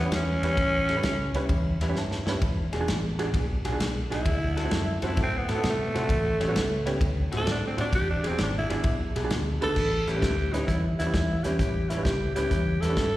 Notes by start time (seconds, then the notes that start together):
Already playing: E4
0.00 A2 G3 B3 C#4
0.05 C#4 G4 B4
0.11 E2, snare, ride
0.15 C#4
0.42 E2 A2 G3 C#4 E4 G4 B4, snare, ride
0.57 A1, kick, snare, ride
0.89 A2 G3 C#4 E4 G4 A4, snare, ride
0.96 C#4 G4 B4
1.03 C#2, snare, ride
1.34 C#2 A2 G3 C#4 E4 G4 B4, snare, ride
1.49 E2, kick, ride
1.80 E2 A2 G3 C#4 E4 G4 B4 E5, snare, ride
1.89 C#4 G4 B4
1.96 G2 A5, snare
2.11 snare
2.26 G2 A2 G3 C#4 E4 G4 B4, snare
2.41 E1, kick, ride
2.73 E1 E3 B3 D4 F#4 G#4, snare, ride
2.80 D4 F#4 G#4
2.88 A1, snare, ride
3.19 E3 B3 D4 F#4 G#4, snare, ride
3.33 B1, kick, snare, ride
3.64 B1 E3 B3 D4 F#4 G#4, snare, ride
3.72 D4 F#4 G#4
3.80 B1, snare, ride
4.10 B1 E3 B3 D4 E4 F#4 G#4, snare, ride
4.25 D2, kick, ride
4.57 D3 C4 E4 F#4 A4, snare, ride
4.64 C4 E4 F#4
4.71 F#2, snare, ride
5.02 F#2 D3 C4 E4 F#4 A4, snare, ride
5.07 E4
5.17 A2, kick, snare, ride
5.23 C4
5.37 B3
5.49 A2 D3 C4 E4 F#4 A4, snare, ride
5.54 B3 C4 E4 A4
5.64 C3, snare, ride
5.70 A3
5.94 C3 D3 C4 E4 F#4 A4, snare, ride
6.09 A1, kick, snare, ride
6.40 A1 A2 G3 C#4 E4 G4, snare, ride
6.48 B3 C#4 F#4
6.56 C#2, snare, ride
6.86 A2 G3 B3 C#4 E4 G4, snare, ride
7.01 D2, kick, ride
7.32 A2 D3 A3 C4 E4 F#4, snare, ride
7.37 C4 E4 F#4 A4
7.47 A2, snare, ride
7.51 D4
7.67 C4
7.77 A2 D3 A3 C4 D4 E4 F#4, snare, ride
7.92 E1 G4, kick, snare, ride
8.10 D4
8.24 E3 B3 C4 D4 F#4 G#4, snare, ride
8.32 D4 F#4 G#4
8.38 G#1, snare, ride
8.43 D4
8.58 E4
8.69 G#1 E3 B3 D4 F#4 G#4, snare, ride
8.84 B1, kick, ride
9.16 B1 E3 B3 D4 F#4 G#4, snare, ride
9.24 D4 F#4 G#4
9.31 D2, snare, ride
9.61 D2 E3 B3 D4 F#4 G#4 A4 B4, snare, ride
9.76 A1, kick, snare, crash
10.07 A1 A2 G3 C#4 E4 G4 B4, snare, closed hi-hat
10.16 C#4 G4 B4
10.22 D2, kick, snare, closed hi-hat
10.53 A2 G3 C#4 D#4 E4 G4 B4, snare, closed hi-hat
10.67 E2 E4, kick, snare, closed hi-hat
10.99 E2 A2 G3 C#4 E4 G4 B4, snare, closed hi-hat
11.06 C#4 G4 B4
11.14 E2, kick, snare, closed hi-hat
11.44 E2 A2 G3 C#4 E4 G4 B4, snare, closed hi-hat
11.59 A1 G4, kick, snare, closed hi-hat
11.89 A2 G3 C#4 E4 G4 B4, snare, closed hi-hat
11.97 C#4 G4 B4
12.04 C#2 G4, kick, snare, closed hi-hat
12.35 C#2 A2 G3 C#4 E4 G4 B4, snare, closed hi-hat
12.51 E2, kick, snare, closed hi-hat
12.81 E2 A2 G3 C#4 E4 G4 A4 B4, snare, closed hi-hat
12.89 C#4 G4 B4
12.97 G2, kick, snare, closed hi-hat